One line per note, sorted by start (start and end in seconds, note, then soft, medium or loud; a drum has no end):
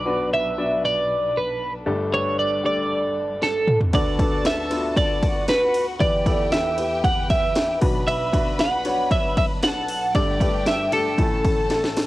0.00 1.57 B1 medium
0.00 1.57 B2 medium
0.00 1.85 B2 medium
0.00 1.85 F#3 medium
0.00 0.05 B3 medium
0.00 0.06 D4 medium
0.00 3.90 D4 medium
0.00 0.06 F#4 medium
0.00 0.06 B4 medium
0.00 1.83 B4 medium
0.00 0.29 D5 loud
0.05 0.44 B3 medium
0.05 0.44 D4 medium
0.05 0.44 F#4 medium
0.05 0.44 B4 medium
0.34 0.85 E5 loud
0.58 1.34 B3 medium
0.58 1.34 D4 medium
0.58 1.34 F#4 medium
0.58 1.35 D5 medium
0.85 1.38 D5 loud
1.37 1.73 B4 medium
1.86 3.89 G1 medium
1.86 3.90 G2 medium
1.86 3.92 G2 medium
1.86 3.92 G3 medium
1.86 2.06 A3 medium
1.86 2.06 D4 medium
1.86 2.06 G4 medium
1.86 2.06 A4 loud
1.86 3.92 A4 medium
2.12 2.51 A3 medium
2.12 2.51 D4 medium
2.12 2.51 G4 medium
2.12 2.51 B4 medium
2.12 2.39 C#5 medium
2.39 2.65 D5 medium
2.64 3.41 A3 medium
2.64 3.41 D4 medium
2.64 3.41 G4 medium
2.64 3.41 A4 medium
2.64 3.45 D5 medium
3.42 3.79 A4 medium
3.42 snare medium
3.68 mid tom loud
3.81 floor tom loud
3.93 5.98 D2 medium
3.93 5.97 D2 medium
3.93 5.96 D3 medium
3.93 5.99 D3 medium
3.93 4.13 B3 medium
3.93 4.13 D4 medium
3.93 4.13 F#4 medium
3.93 5.99 F#4 medium
3.93 5.20 A4 medium
3.93 4.13 A4 medium
3.93 10.10 B4 medium
3.93 4.46 D5 loud
3.93 5.20 A5 loud
3.93 kick loud
3.93 ride medium
4.19 4.58 B3 medium
4.19 4.58 D4 medium
4.19 4.58 F#4 medium
4.19 4.58 A4 medium
4.19 kick loud
4.19 ride medium
4.45 4.94 E5 loud
4.45 snare loud
4.45 ride medium
4.70 5.47 B3 medium
4.70 5.47 D4 medium
4.70 4.78 F4 medium
4.70 5.48 A4 medium
4.70 snare soft
4.70 ride medium
4.77 5.51 F#4 medium
4.97 5.46 D5 loud
4.97 kick loud
4.97 ride medium
5.23 5.99 F#4 medium
5.23 5.99 F#5 medium
5.23 kick loud
5.23 ride medium
5.48 5.85 B4 loud
5.48 snare loud
5.48 ride medium
5.74 open hi-hat medium
5.74 ride medium
5.99 7.77 E2 medium
5.99 7.80 E2 medium
5.99 7.77 E3 medium
5.99 7.80 E3 medium
5.99 6.19 B3 medium
5.99 6.19 E4 medium
5.99 6.19 G4 medium
5.99 7.78 G4 medium
5.99 7.80 G4 medium
5.99 6.19 B4 medium
5.99 6.52 D5 loud
5.99 7.78 G5 loud
5.99 kick loud
5.99 ride medium
6.25 6.64 B3 medium
6.25 6.65 E4 medium
6.25 6.65 G4 medium
6.25 6.65 A4 medium
6.25 kick loud
6.25 ride medium
6.52 7.04 E5 loud
6.52 snare loud
6.52 ride medium
6.78 7.55 B3 medium
6.78 7.55 E4 medium
6.78 7.55 G4 medium
6.78 7.55 B4 medium
6.78 ride medium
7.04 7.30 F#5 loud
7.04 kick loud
7.04 ride medium
7.30 7.78 E5 loud
7.30 kick loud
7.30 ride medium
7.55 snare loud
7.55 ride medium
7.81 9.85 B1 medium
7.81 9.84 B2 medium
7.81 10.13 B2 medium
7.81 10.12 F#3 medium
7.81 8.23 B3 medium
7.81 8.23 D4 medium
7.81 11.15 D4 medium
7.81 8.23 F#4 medium
7.81 8.23 B4 medium
7.81 9.59 B4 medium
7.81 9.59 B5 loud
7.81 kick loud
7.81 open hi-hat medium
7.81 ride medium
8.08 8.60 E5 loud
8.08 ride medium
8.32 8.71 B3 medium
8.32 8.71 D4 medium
8.32 8.71 F#4 medium
8.32 8.71 B4 medium
8.32 kick loud
8.32 ride medium
8.59 9.11 F#5 loud
8.59 snare loud
8.59 ride medium
8.85 9.62 B3 medium
8.85 9.62 D4 medium
8.85 9.62 F#4 medium
8.85 9.62 C#5 medium
8.85 snare soft
8.85 ride medium
9.11 9.37 E5 loud
9.11 kick loud
9.11 ride medium
9.37 9.45 E5 loud
9.37 kick loud
9.37 ride medium
9.63 10.14 A4 medium
9.63 10.15 F#5 loud
9.63 10.14 A5 loud
9.63 snare loud
9.63 ride medium
9.88 open hi-hat medium
9.88 ride medium
10.13 11.15 G1 medium
10.13 11.16 G2 medium
10.13 11.15 G2 medium
10.13 11.17 G3 medium
10.13 10.34 A3 medium
10.13 10.34 D4 medium
10.13 10.34 G4 medium
10.13 11.17 G4 medium
10.13 11.17 A4 medium
10.13 10.34 A4 medium
10.13 10.67 D5 loud
10.13 11.16 G5 loud
10.13 kick loud
10.13 ride medium
10.41 10.79 A3 medium
10.41 10.79 D4 medium
10.41 10.79 G4 medium
10.41 10.79 B4 medium
10.41 kick loud
10.41 ride medium
10.66 10.91 E5 medium
10.66 snare loud
10.66 ride medium
10.92 11.17 A3 medium
10.92 11.18 D4 medium
10.92 11.18 G4 medium
10.92 11.18 A4 medium
10.92 11.92 A4 medium
10.92 ride medium
11.18 12.07 A1 medium
11.18 12.07 A2 medium
11.18 12.07 E3 medium
11.18 11.70 A3 medium
11.18 12.01 C#4 medium
11.18 12.07 C#4 medium
11.18 12.01 E4 medium
11.18 12.07 A4 medium
11.18 11.69 A4 medium
11.18 12.07 A5 medium
11.18 kick loud
11.18 ride medium
11.45 kick loud
11.45 ride medium
11.70 12.07 A3 medium
11.70 12.07 A4 medium
11.70 snare medium
11.70 ride medium
11.84 snare medium
11.97 snare loud
11.97 open hi-hat medium
11.97 ride medium